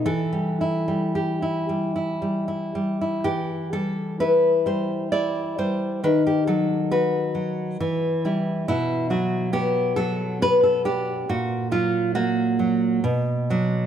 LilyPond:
\new Staff \with { instrumentName = "Nylon-string guitar" } { \time 3/4 \key e \minor \tempo 4 = 68 << { a'4 g'4 r4 | g'8 a'8 b'8 c''8 d''8 c''8 | b'16 g'16 a'8 b'2 | e'8 fis'8 g'8 a'8 b'16 a'16 g'8 |
fis'8 f'8 fis'2 | } \\ { e16 g16 e'16 g8 e'16 g16 e'16 g16 e'16 g16 e'16 | e8 g8 e'8 g8 e'8 g8 | dis8 fis8 fis'8 fis8 e8 <g e'>8 | b,8 fis8 b8 fis8 b8 d'8 |
ais,8 fis8 ais8 fis8 b,8 <fis d'>8 | } >> }